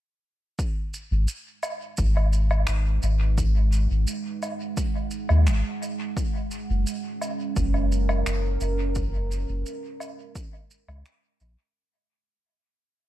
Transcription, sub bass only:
0, 0, Header, 1, 2, 480
1, 0, Start_track
1, 0, Key_signature, 5, "minor"
1, 0, Tempo, 697674
1, 403, Time_signature, 4, 2, 24, 8
1, 9000, End_track
2, 0, Start_track
2, 0, Title_t, "Sub bass"
2, 0, Program_c, 0, 38
2, 766, Note_on_c, 0, 32, 96
2, 869, Note_off_c, 0, 32, 0
2, 1366, Note_on_c, 0, 32, 101
2, 1823, Note_off_c, 0, 32, 0
2, 1844, Note_on_c, 0, 32, 75
2, 2056, Note_off_c, 0, 32, 0
2, 2084, Note_on_c, 0, 32, 105
2, 2664, Note_off_c, 0, 32, 0
2, 2688, Note_on_c, 0, 32, 93
2, 2790, Note_off_c, 0, 32, 0
2, 3646, Note_on_c, 0, 39, 90
2, 3763, Note_on_c, 0, 32, 91
2, 3774, Note_off_c, 0, 39, 0
2, 3872, Note_off_c, 0, 32, 0
2, 4608, Note_on_c, 0, 30, 95
2, 4710, Note_off_c, 0, 30, 0
2, 5206, Note_on_c, 0, 30, 106
2, 5662, Note_off_c, 0, 30, 0
2, 5685, Note_on_c, 0, 30, 85
2, 5896, Note_off_c, 0, 30, 0
2, 5923, Note_on_c, 0, 30, 103
2, 6503, Note_off_c, 0, 30, 0
2, 6529, Note_on_c, 0, 30, 99
2, 6630, Note_off_c, 0, 30, 0
2, 7485, Note_on_c, 0, 37, 95
2, 7589, Note_off_c, 0, 37, 0
2, 7848, Note_on_c, 0, 34, 107
2, 7954, Note_off_c, 0, 34, 0
2, 9000, End_track
0, 0, End_of_file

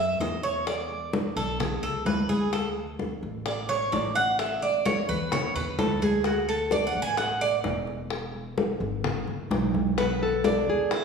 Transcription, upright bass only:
0, 0, Header, 1, 2, 480
1, 0, Start_track
1, 0, Tempo, 465477
1, 692, Time_signature, 4, 2, 24, 8
1, 11389, End_track
2, 0, Start_track
2, 0, Title_t, "Upright bass"
2, 0, Program_c, 0, 32
2, 0, Note_on_c, 0, 42, 94
2, 167, Note_off_c, 0, 42, 0
2, 206, Note_on_c, 0, 40, 92
2, 1342, Note_off_c, 0, 40, 0
2, 1404, Note_on_c, 0, 35, 85
2, 1852, Note_off_c, 0, 35, 0
2, 1880, Note_on_c, 0, 37, 60
2, 2107, Note_off_c, 0, 37, 0
2, 2117, Note_on_c, 0, 38, 87
2, 3256, Note_off_c, 0, 38, 0
2, 3326, Note_on_c, 0, 33, 88
2, 4005, Note_off_c, 0, 33, 0
2, 4047, Note_on_c, 0, 33, 94
2, 5181, Note_off_c, 0, 33, 0
2, 5247, Note_on_c, 0, 40, 96
2, 5693, Note_off_c, 0, 40, 0
2, 5726, Note_on_c, 0, 40, 67
2, 5949, Note_off_c, 0, 40, 0
2, 5968, Note_on_c, 0, 38, 89
2, 7102, Note_off_c, 0, 38, 0
2, 7167, Note_on_c, 0, 33, 84
2, 7846, Note_off_c, 0, 33, 0
2, 7884, Note_on_c, 0, 28, 94
2, 9021, Note_off_c, 0, 28, 0
2, 9077, Note_on_c, 0, 32, 96
2, 9529, Note_off_c, 0, 32, 0
2, 9561, Note_on_c, 0, 33, 64
2, 9788, Note_off_c, 0, 33, 0
2, 9802, Note_on_c, 0, 35, 99
2, 10942, Note_off_c, 0, 35, 0
2, 11008, Note_on_c, 0, 40, 78
2, 11389, Note_off_c, 0, 40, 0
2, 11389, End_track
0, 0, End_of_file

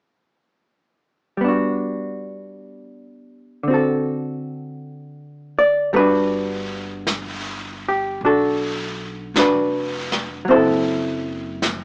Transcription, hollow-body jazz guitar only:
0, 0, Header, 1, 2, 480
1, 0, Start_track
1, 0, Key_signature, 1, "major"
1, 0, Tempo, 1136364
1, 585, Time_signature, 4, 2, 24, 8
1, 5002, End_track
2, 0, Start_track
2, 0, Title_t, "Hollow-body jazz guitar"
2, 0, Program_c, 0, 26
2, 580, Note_on_c, 0, 55, 39
2, 595, Note_on_c, 0, 59, 38
2, 610, Note_on_c, 0, 62, 40
2, 627, Note_on_c, 0, 66, 38
2, 1535, Note_on_c, 0, 50, 38
2, 1539, Note_off_c, 0, 55, 0
2, 1547, Note_off_c, 0, 59, 0
2, 1553, Note_on_c, 0, 60, 40
2, 1554, Note_off_c, 0, 62, 0
2, 1560, Note_off_c, 0, 66, 0
2, 1565, Note_on_c, 0, 66, 39
2, 1579, Note_on_c, 0, 69, 43
2, 2358, Note_off_c, 0, 69, 0
2, 2359, Note_on_c, 0, 74, 71
2, 2500, Note_off_c, 0, 50, 0
2, 2505, Note_on_c, 0, 55, 46
2, 2508, Note_off_c, 0, 74, 0
2, 2509, Note_off_c, 0, 60, 0
2, 2509, Note_on_c, 0, 69, 48
2, 2511, Note_on_c, 0, 59, 42
2, 2515, Note_off_c, 0, 66, 0
2, 2517, Note_off_c, 0, 69, 0
2, 2519, Note_on_c, 0, 71, 76
2, 2524, Note_off_c, 0, 59, 0
2, 2525, Note_on_c, 0, 62, 50
2, 2525, Note_on_c, 0, 66, 52
2, 2977, Note_off_c, 0, 71, 0
2, 3331, Note_on_c, 0, 67, 55
2, 3461, Note_off_c, 0, 62, 0
2, 3461, Note_off_c, 0, 66, 0
2, 3483, Note_off_c, 0, 67, 0
2, 3483, Note_on_c, 0, 62, 47
2, 3484, Note_on_c, 0, 66, 49
2, 3490, Note_on_c, 0, 69, 67
2, 3941, Note_off_c, 0, 69, 0
2, 3952, Note_off_c, 0, 62, 0
2, 3957, Note_off_c, 0, 66, 0
2, 3957, Note_on_c, 0, 62, 47
2, 3962, Note_on_c, 0, 66, 49
2, 3968, Note_on_c, 0, 71, 73
2, 4412, Note_off_c, 0, 55, 0
2, 4414, Note_off_c, 0, 62, 0
2, 4414, Note_on_c, 0, 54, 45
2, 4416, Note_off_c, 0, 66, 0
2, 4419, Note_off_c, 0, 71, 0
2, 4431, Note_on_c, 0, 60, 50
2, 4437, Note_on_c, 0, 64, 55
2, 4438, Note_on_c, 0, 72, 74
2, 4441, Note_on_c, 0, 69, 56
2, 4455, Note_off_c, 0, 69, 0
2, 4458, Note_off_c, 0, 72, 0
2, 4460, Note_on_c, 0, 69, 50
2, 5002, Note_off_c, 0, 54, 0
2, 5002, Note_off_c, 0, 60, 0
2, 5002, Note_off_c, 0, 64, 0
2, 5002, Note_off_c, 0, 69, 0
2, 5002, End_track
0, 0, End_of_file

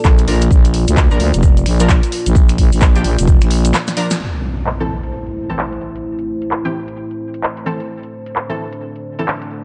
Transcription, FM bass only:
0, 0, Header, 1, 2, 480
1, 0, Start_track
1, 0, Tempo, 461538
1, 527, Time_signature, 4, 2, 24, 8
1, 10028, End_track
2, 0, Start_track
2, 0, Title_t, "FM bass"
2, 0, Program_c, 0, 39
2, 47, Note_on_c, 0, 34, 100
2, 272, Note_off_c, 0, 34, 0
2, 288, Note_on_c, 0, 34, 95
2, 513, Note_off_c, 0, 34, 0
2, 915, Note_on_c, 0, 38, 96
2, 1131, Note_off_c, 0, 38, 0
2, 1155, Note_on_c, 0, 34, 94
2, 1233, Note_off_c, 0, 34, 0
2, 1247, Note_on_c, 0, 38, 96
2, 1371, Note_off_c, 0, 38, 0
2, 1395, Note_on_c, 0, 29, 94
2, 1712, Note_off_c, 0, 29, 0
2, 1727, Note_on_c, 0, 34, 97
2, 2091, Note_off_c, 0, 34, 0
2, 2355, Note_on_c, 0, 34, 98
2, 2672, Note_off_c, 0, 34, 0
2, 2687, Note_on_c, 0, 34, 96
2, 2811, Note_off_c, 0, 34, 0
2, 2835, Note_on_c, 0, 34, 96
2, 3153, Note_off_c, 0, 34, 0
2, 3167, Note_on_c, 0, 34, 96
2, 3291, Note_off_c, 0, 34, 0
2, 3314, Note_on_c, 0, 29, 92
2, 3531, Note_off_c, 0, 29, 0
2, 3554, Note_on_c, 0, 34, 97
2, 3872, Note_off_c, 0, 34, 0
2, 10028, End_track
0, 0, End_of_file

